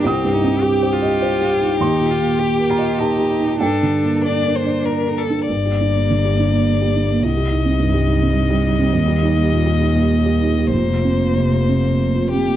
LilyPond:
<<
  \new Staff \with { instrumentName = "Violin" } { \time 3/4 \key g \minor \tempo 4 = 102 g'2.~ | g'2. | a'4 d''8 c''8 bes'8 a'8 | d''2. |
ees''2.~ | ees''2. | c''2~ c''8 g'8 | }
  \new Staff \with { instrumentName = "Cello" } { \time 3/4 \key g \minor c'8 ees'8 g'8 f'4. | ees'8 f'8 g'8 f'8 ees'4 | d'2~ d'8 r8 | bes2. |
g2.~ | g2. | bes2~ bes8 r8 | }
  \new Staff \with { instrumentName = "Felt piano" } { \time 3/4 \key g \minor << { ees'''2~ ees'''8 r8 | c'''4. bes''8 a''4 | g''2~ g''8 r8 | r2. |
r2. | r2. | r2. | } \\ { \tuplet 3/2 { c,8 g,8 c'8 g'8 c''8 ees''8 c''8 g'8 ees'8 } | \tuplet 3/2 { ees,8 bes,8 bes8 g'8 bes'8 ees''8 bes'8 g'8 ees'8 } | \tuplet 3/2 { g,8 d8 bes8 a'8 bes'8 d''8 bes'8 a'8 d'8 } | g,16 g'16 d'16 bes16 d16 g'16 d'16 bes8 g'16 d'16 bes16 |
c,16 g'16 ees'16 c'16 g,16 g'16 ees'16 c'8 g'16 ees'16 c'16 | ees,16 g'16 ees'16 bes16 bes,16 g'16 ees'16 bes8 g'16 ees'16 bes16 | f,16 f'16 c'16 bes16 c16 f'16 c'16 bes8 f'16 c'16 bes16 | } >> }
  \new Staff \with { instrumentName = "Double bass" } { \clef bass \time 3/4 \key g \minor r2. | r2. | r2. | g,,2. |
c,2. | ees,2. | f,,2. | }
>>